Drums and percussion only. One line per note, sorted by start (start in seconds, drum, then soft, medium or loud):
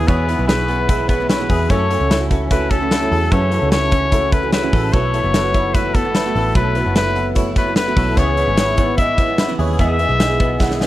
0.08 kick loud
0.08 closed hi-hat medium
0.29 closed hi-hat medium
0.49 snare loud
0.49 closed hi-hat loud
0.68 closed hi-hat medium
0.89 kick loud
0.89 closed hi-hat loud
1.09 kick medium
1.09 closed hi-hat medium
1.30 snare loud
1.30 closed hi-hat medium
1.50 kick medium
1.50 open hi-hat medium
1.70 kick loud
1.70 closed hi-hat medium
1.91 closed hi-hat medium
2.11 snare loud
2.11 closed hi-hat medium
2.31 kick medium
2.31 closed hi-hat medium
2.51 kick loud
2.51 closed hi-hat loud
2.71 kick medium
2.71 closed hi-hat medium
2.91 snare medium
2.91 closed hi-hat medium
3.12 open hi-hat medium
3.32 kick medium
3.32 closed hi-hat medium
3.52 closed hi-hat medium
3.72 snare loud
3.72 closed hi-hat loud
3.91 kick loud
3.91 closed hi-hat medium
4.12 kick medium
4.12 closed hi-hat loud
4.32 kick loud
4.32 closed hi-hat medium
4.53 snare loud
4.53 closed hi-hat medium
4.73 kick medium
4.73 open hi-hat medium
4.93 kick medium
4.93 closed hi-hat medium
5.14 closed hi-hat medium
5.34 snare loud
5.34 closed hi-hat loud
5.54 kick medium
5.54 closed hi-hat medium
5.75 kick loud
5.75 closed hi-hat medium
5.95 kick loud
5.95 closed hi-hat medium
6.15 snare loud
6.15 closed hi-hat medium
6.35 open hi-hat medium
6.55 kick medium
6.55 closed hi-hat medium
6.75 closed hi-hat medium
6.95 snare loud
6.95 closed hi-hat loud
7.16 closed hi-hat medium
7.35 kick medium
7.35 closed hi-hat medium
7.56 kick medium
7.56 closed hi-hat medium
7.76 snare loud
7.76 closed hi-hat medium
7.96 kick medium
7.96 open hi-hat medium
8.17 kick medium
8.17 closed hi-hat medium
8.37 closed hi-hat medium
8.57 snare loud
8.57 closed hi-hat loud
8.77 kick medium
8.77 closed hi-hat medium
8.98 kick medium
8.98 closed hi-hat medium
9.18 kick loud
9.18 closed hi-hat medium
9.38 snare loud
9.38 closed hi-hat medium
9.59 open hi-hat medium
9.79 kick medium
9.79 closed hi-hat medium
9.99 closed hi-hat medium
10.20 snare loud
10.20 closed hi-hat loud
10.40 kick loud
10.40 closed hi-hat medium
10.60 kick medium
10.60 snare medium
10.71 snare medium
10.81 snare medium